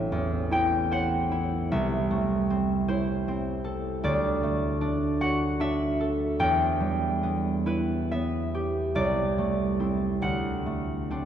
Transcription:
Already playing: A1 C4 E5
0.12 E2
0.51 E4 G5
0.91 C5 F#5
1.32 E4
1.72 C2 E5
2.11 A3
2.50 C4
2.88 E4 C5
3.28 C4
3.64 A4
4.04 D2 D5
4.43 A3
4.81 D4
5.21 F#4 F#5
5.60 D4 E5
6.00 A4
6.39 E2 G5
6.80 G3
7.23 B3
7.66 E4 B4
8.11 B3 E5
8.54 G4
8.95 C2 D5
9.38 A3
9.80 C4 E4
10.22 D2 F#5
10.66 A3
11.10 C4 D4

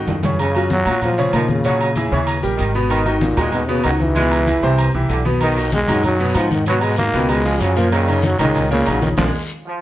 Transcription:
Already playing: D#3 D#4 F#4
0.07 F#2, high conga, low timbale, maracas
0.23 C#3 C#4 C#5, high conga, low timbale, maracas
0.39 C#3, high conga, low agogo, maracas
0.55 F#3 F4 F#4, high conga, low agogo
0.70 F#3, high conga, maracas
0.85 A#2 F#3 F4 F#4, high conga, low conga, low agogo, maracas
1.01 F3, high conga, low conga, low agogo, maracas
1.18 C#3 C#4 C#5, high conga, maracas
1.32 A#2 C#3 D#3 F3 F4 A#4, high conga, low timbale, low agogo, maracas
1.48 C#3, high conga, maracas
1.64 C#3 F#3 C#4 C#5, high conga, low agogo, maracas
1.80 high conga, low agogo
1.96 E3 E4 G#4, high conga, low agogo, maracas
2.11 D#2 C#3 E3 C#4 C#5, high conga, maracas
2.27 high conga, low agogo, maracas
2.42 A#1 G3 G4 A#4, high conga, maracas
2.57 G#1 D#3, high conga, low agogo, maracas
2.74 B2 B3 B4, maracas
2.90 D#3, high conga, low agogo, maracas
3.05 D#3 D#4 F#4, high conga, low agogo
3.21 A#2, high conga, maracas
3.37 D#2 D#3 G#3 D#4 F#4, high conga, low conga, low agogo, maracas
3.52 B2, high conga, low conga, low agogo, maracas
3.68 B2 C#3 B3 B4, high conga
3.84 C#2 D#3 F#3 D#4 F#4, high conga, low agogo, maracas
4.00 E3, high conga, maracas
4.15 B2 G#3 B3 B4, high conga, low agogo, maracas
4.31 high conga, low agogo
4.46 E3 E4 G#4, high conga, low agogo, maracas
4.62 C2 C3 E3 C4 C5, high conga, maracas
4.78 high conga, low agogo, maracas
4.93 C2 E3 E4 G4, high conga
5.09 B1 D3, high conga, low agogo, maracas
5.25 B2 B3 B4, high conga, maracas
5.41 D#3, high conga, low agogo, long guiro, maracas
5.56 D#3 D#4 F#4, high conga, low agogo
5.72 G#3, high conga, short guiro, maracas
5.87 F#2 D#3 F#3 D#4 F#4, high conga, low conga, low agogo, short guiro, maracas
6.03 F#3, high conga, low conga, low agogo, long guiro, maracas
6.19 B2 B3 B4, high conga
6.34 G#2 D#3 F3 D#4 F#5, high conga, low agogo, short guiro, maracas
6.51 D#3, high conga, short guiro, maracas
6.65 B2 F#3 B3 B4, high conga, low agogo, long guiro, maracas
6.81 G#3, high conga, low agogo, maracas
6.97 D#3 A#3 D#4 F#4, high conga, low agogo, short guiro, maracas
7.13 C#2 B2 D#3 B3 B4, high conga, short guiro, maracas
7.29 G#3, high conga, low agogo, long guiro, maracas
7.45 F3 F4 G#4, high conga, maracas
7.60 F#2 C#3 F#3, high conga, low agogo, short guiro, maracas
7.76 A#2 F3 A#3 A#4, short guiro, maracas
7.91 C#3 D#3, high conga, low agogo, long guiro, maracas
8.07 C#3 C#4 D#4, high conga, low agogo
8.23 F#3, high conga, short guiro, maracas
8.38 C#2 C#3 D#3 G#3 C#4 D#4, high conga, low conga, low agogo, short guiro, maracas
8.54 high conga, low conga, low agogo, long guiro, maracas
8.71 A#2 C#3 A#3 A#4, high conga
8.86 A#1 C#3 F#3 C#4 D#4, high conga, low agogo, short guiro, maracas
9.01 D#3, high conga, short guiro, maracas
9.17 A#1 F3 G#3 A#3 D4, high conga, high timbale, long guiro, maracas
9.65 F3

